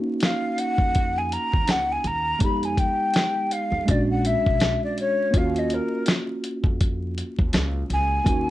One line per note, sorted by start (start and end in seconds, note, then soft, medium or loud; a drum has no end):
0.00 2.36 A#3 medium
0.00 2.37 C#4 medium
0.00 2.38 D#4 medium
0.00 2.36 F#4 medium
0.20 0.60 F5 medium
0.20 snare loud
0.20 closed hi-hat medium
0.58 1.19 F#5 loud
0.58 closed hi-hat medium
0.78 1.35 F2 medium
0.78 kick medium
0.95 kick medium
0.95 closed hi-hat medium
1.18 1.34 G#5 medium
1.32 1.72 A#5 loud
1.32 closed hi-hat medium
1.53 1.68 D#2 medium
1.53 kick medium
1.68 1.96 C#2 medium
1.68 1.93 F#5 loud
1.68 snare loud
1.68 closed hi-hat loud
1.92 2.08 G#5 medium
2.04 2.32 D#2 medium
2.04 2.42 A#5 loud
2.04 closed hi-hat medium
2.39 2.85 F2 medium
2.39 3.84 G#3 medium
2.39 3.85 B3 medium
2.39 kick loud
2.39 closed hi-hat loud
2.43 3.86 D#4 medium
2.43 3.87 G4 medium
2.43 2.66 B5 medium
2.63 2.80 G#5 medium
2.63 closed hi-hat medium
2.77 3.54 G5 loud
2.77 kick medium
2.77 closed hi-hat medium
3.14 snare loud
3.14 closed hi-hat medium
3.51 3.92 F5 loud
3.51 closed hi-hat medium
3.72 3.84 F2 medium
3.86 4.32 A#1 loud
3.86 5.30 G#3 medium
3.86 5.31 C#4 medium
3.86 5.32 D4 medium
3.86 kick medium
3.86 closed hi-hat medium
3.90 5.33 F#4 medium
3.90 4.10 D5 medium
4.10 4.27 F#5 medium
4.25 4.83 E5 loud
4.25 closed hi-hat medium
4.46 4.74 B1 medium
4.46 kick medium
4.60 snare loud
4.60 closed hi-hat medium
4.84 4.97 D5 medium
4.98 5.38 C#5 medium
4.98 closed hi-hat medium
5.31 5.78 D#2 loud
5.31 8.21 A#3 medium
5.31 8.22 C#4 medium
5.31 8.23 F4 medium
5.31 kick loud
5.31 closed hi-hat loud
5.37 8.24 F#4 medium
5.37 5.60 F5 medium
5.56 5.75 D#5 medium
5.56 closed hi-hat medium
5.70 6.09 A#4 medium
5.70 closed hi-hat medium
6.06 snare loud
6.06 closed hi-hat medium
6.44 closed hi-hat medium
6.63 7.20 F2 medium
6.63 kick medium
6.81 kick medium
6.81 closed hi-hat medium
7.18 closed hi-hat medium
7.39 7.50 D#2 medium
7.39 kick medium
7.53 7.82 C#2 loud
7.53 snare loud
7.53 closed hi-hat loud
7.90 8.18 C#2 medium
7.90 8.50 G#5 medium
7.90 closed hi-hat medium
8.24 8.50 D#2 loud
8.24 8.50 A#3 medium
8.24 8.50 C#4 medium
8.24 8.50 D#4 medium
8.24 kick loud
8.24 closed hi-hat medium
8.29 8.50 F#4 medium